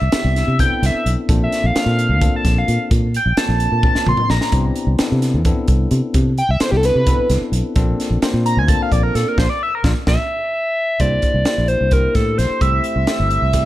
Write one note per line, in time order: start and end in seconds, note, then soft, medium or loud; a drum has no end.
0.00 0.11 C2 medium
0.00 0.56 E5 loud
0.12 0.56 B3 medium
0.12 0.56 C4 medium
0.12 0.56 D4 medium
0.12 0.56 E4 medium
0.12 0.56 G4 medium
0.12 snare loud
0.12 closed hi-hat medium
0.24 0.42 C2 loud
0.36 snare soft
0.36 closed hi-hat soft
0.48 0.66 C3 medium
0.59 1.29 B3 medium
0.59 1.28 C4 medium
0.59 1.28 D4 medium
0.59 1.29 E4 medium
0.59 1.29 A4 medium
0.59 0.82 G5 loud
0.59 kick medium
0.59 closed hi-hat medium
0.71 muted fingered electric bass stroke soft
0.82 0.91 C2 medium
0.82 1.07 E5 medium
0.82 snare soft
0.82 closed hi-hat medium
1.06 1.15 B1 medium
1.06 closed hi-hat medium
1.29 1.47 A#1 medium
1.29 1.72 A#3 medium
1.29 1.72 C4 medium
1.29 1.72 D4 medium
1.29 1.72 F4 medium
1.29 1.72 A4 medium
1.29 kick loud
1.29 closed hi-hat medium
1.44 1.65 E5 medium
1.52 snare soft
1.52 closed hi-hat soft
1.64 1.73 A#1 medium
1.64 2.30 F5 loud
1.75 2.18 A#3 medium
1.75 2.18 C4 medium
1.75 2.18 D4 medium
1.75 2.18 F4 medium
1.75 2.18 A4 medium
1.75 snare loud
1.75 closed hi-hat medium
1.86 2.11 A#2 medium
1.99 closed hi-hat medium
2.09 2.27 D2 medium
2.21 3.07 A#3 medium
2.21 3.07 C4 medium
2.21 3.07 D4 medium
2.21 3.07 F4 medium
2.21 3.07 A4 medium
2.21 kick loud
2.21 closed hi-hat medium
2.36 2.57 A5 medium
2.45 2.63 A#1 medium
2.45 kick medium
2.45 snare soft
2.45 closed hi-hat medium
2.58 2.80 F5 medium
2.68 2.77 A#2 medium
2.68 closed hi-hat medium
2.91 3.17 A#2 loud
2.91 kick loud
2.91 closed hi-hat medium
3.14 3.37 G5 medium
3.14 closed hi-hat medium
3.26 3.34 A#1 medium
3.37 3.80 A#3 medium
3.37 3.80 C4 medium
3.37 3.80 D4 medium
3.37 3.80 F4 medium
3.37 3.80 A4 medium
3.37 4.03 A5 medium
3.37 snare loud
3.37 closed hi-hat medium
3.49 3.66 A#1 medium
3.60 closed hi-hat medium
3.72 3.89 A#2 medium
3.83 4.53 A#3 medium
3.83 4.51 C4 medium
3.83 4.52 D4 medium
3.83 4.53 F4 medium
3.83 4.53 A#4 medium
3.83 kick loud
3.95 muted fingered electric bass stroke soft
3.95 snare medium
4.06 4.15 A#1 medium
4.06 4.30 C6 loud
4.06 mid tom medium
4.17 muted fingered electric bass stroke soft
4.17 mid tom medium
4.30 4.38 A#1 medium
4.30 4.44 A#5 loud
4.30 snare medium
4.41 snare medium
4.52 4.70 C2 medium
4.52 4.96 B3 medium
4.52 4.95 C4 medium
4.52 4.95 D4 medium
4.52 4.95 E4 medium
4.52 4.95 G4 medium
4.52 kick loud
4.52 closed hi-hat medium
4.76 closed hi-hat soft
4.87 4.96 C2 medium
4.99 5.42 B3 medium
4.99 5.42 C4 medium
4.99 5.42 D4 medium
4.99 5.42 E4 medium
4.99 5.42 A4 medium
4.99 muted fingered electric bass stroke soft
4.99 snare loud
4.99 closed hi-hat medium
5.12 5.36 C3 medium
5.22 snare soft
5.22 closed hi-hat medium
5.34 5.52 E2 medium
5.45 6.31 B3 medium
5.45 6.31 C4 medium
5.45 6.31 D4 medium
5.45 6.31 E4 medium
5.45 6.31 A4 medium
5.45 kick loud
5.45 closed hi-hat medium
5.68 5.86 C2 medium
5.68 kick medium
5.68 closed hi-hat medium
5.91 6.00 C3 medium
5.91 closed hi-hat medium
6.14 6.41 C3 loud
6.14 kick loud
6.14 closed hi-hat medium
6.38 6.49 G5 medium
6.38 closed hi-hat soft
6.49 6.58 C2 medium
6.49 6.60 E5 medium
6.60 7.04 B3 medium
6.60 7.04 C4 medium
6.60 7.04 D4 medium
6.60 7.04 E4 medium
6.60 7.04 A4 medium
6.60 6.68 C5 medium
6.60 snare loud
6.60 closed hi-hat medium
6.71 6.90 C2 medium
6.71 6.76 G4 medium
6.77 6.84 A4 medium
6.83 7.28 B4 medium
6.83 snare soft
6.83 closed hi-hat medium
6.95 7.13 C3 medium
7.06 7.76 B3 medium
7.06 7.75 C4 medium
7.06 7.75 D4 medium
7.06 7.76 E4 medium
7.06 7.75 A4 medium
7.06 kick loud
7.06 closed hi-hat medium
7.19 muted fingered electric bass stroke soft
7.30 7.39 C2 medium
7.30 snare soft
7.30 closed hi-hat medium
7.41 muted fingered electric bass stroke soft
7.52 7.61 B1 medium
7.52 closed hi-hat medium
7.76 7.94 A#1 medium
7.76 8.19 A#3 medium
7.76 8.19 C4 medium
7.76 8.19 D4 medium
7.76 8.19 F4 medium
7.76 8.19 A4 medium
7.76 kick loud
7.76 closed hi-hat medium
8.00 snare soft
8.00 closed hi-hat medium
8.10 8.19 A#1 medium
8.22 8.65 A#3 medium
8.22 8.65 C4 medium
8.22 8.65 D4 medium
8.22 8.65 F4 medium
8.22 8.65 C5 medium
8.22 snare loud
8.22 closed hi-hat medium
8.33 8.58 A#2 medium
8.46 8.57 A#5 loud
8.46 closed hi-hat medium
8.57 8.75 D2 medium
8.57 8.68 G#5 medium
8.67 9.37 A#3 medium
8.67 9.37 C4 medium
8.67 9.37 D4 medium
8.67 9.37 F4 medium
8.67 9.37 A4 medium
8.67 8.80 A5 loud
8.67 kick medium
8.67 closed hi-hat medium
8.82 8.92 F5 medium
8.92 9.09 A#1 medium
8.92 9.03 D5 loud
8.92 kick medium
8.92 closed hi-hat medium
9.03 9.14 A#4 medium
9.15 9.24 A#2 medium
9.15 9.26 A4 medium
9.15 snare soft
9.15 closed hi-hat medium
9.28 9.38 A#4 medium
9.38 9.46 A#1 loud
9.38 9.45 A#3 medium
9.38 9.45 D4 medium
9.38 9.45 F4 loud
9.38 9.49 C5 medium
9.38 kick medium
9.38 snare medium
9.50 9.61 D5 medium
9.63 9.73 E5 loud
9.75 9.81 A#4 medium
9.84 9.93 A#1 loud
9.84 9.92 A#3 loud
9.84 9.92 D4 loud
9.84 9.92 F4 loud
9.84 kick loud
9.84 snare loud
10.07 10.16 A#1 loud
10.07 10.15 A#3 loud
10.07 10.15 D4 medium
10.07 10.15 F4 medium
10.07 10.51 E5 loud
10.07 kick loud
10.07 snare medium
10.53 11.02 E5 loud
11.00 11.18 C2 medium
11.00 11.43 A#3 medium
11.00 11.43 D4 medium
11.00 11.43 E4 medium
11.00 11.43 G4 medium
11.00 11.43 C5 medium
11.00 11.70 D5 loud
11.00 kick medium
11.00 closed hi-hat medium
11.22 kick medium
11.22 closed hi-hat soft
11.34 11.43 C2 medium
11.45 11.89 A#3 medium
11.45 11.88 D4 soft
11.45 11.88 E4 medium
11.45 11.89 G4 medium
11.45 11.89 C5 medium
11.45 snare loud
11.45 closed hi-hat medium
11.58 11.75 A#1 medium
11.68 11.94 C5 medium
11.68 closed hi-hat soft
11.81 12.07 C2 medium
11.91 12.61 A#3 medium
11.91 12.62 D4 medium
11.91 12.61 E4 medium
11.91 12.60 G4 medium
11.91 12.14 A#4 loud
11.91 12.60 C5 medium
11.91 kick medium
11.91 closed hi-hat medium
12.15 12.40 A2 medium
12.15 12.39 A4 medium
12.15 kick medium
12.15 snare soft
12.15 closed hi-hat medium
12.38 12.47 C2 medium
12.38 12.63 C5 medium
12.38 snare soft
12.38 closed hi-hat soft
12.50 muted fingered electric bass stroke soft
12.61 12.79 C2 medium
12.61 13.04 A3 medium
12.61 13.04 C4 medium
12.61 13.04 E4 medium
12.61 13.04 G4 medium
12.61 13.04 C5 medium
12.61 13.29 E5 loud
12.61 kick medium
12.61 closed hi-hat medium
12.84 closed hi-hat soft
12.96 13.05 C2 medium
13.07 13.50 A3 medium
13.07 13.51 C4 medium
13.07 13.50 E4 medium
13.07 13.50 G4 medium
13.07 13.51 C5 medium
13.07 snare medium
13.07 closed hi-hat medium
13.20 13.37 G1 medium
13.30 13.65 E5 loud
13.30 closed hi-hat soft
13.42 13.65 C2 medium
13.53 13.65 A3 medium
13.53 13.65 C4 medium
13.53 13.65 E4 medium
13.53 13.65 G4 medium
13.53 13.65 D5 medium
13.53 kick medium
13.53 snare soft
13.53 closed hi-hat medium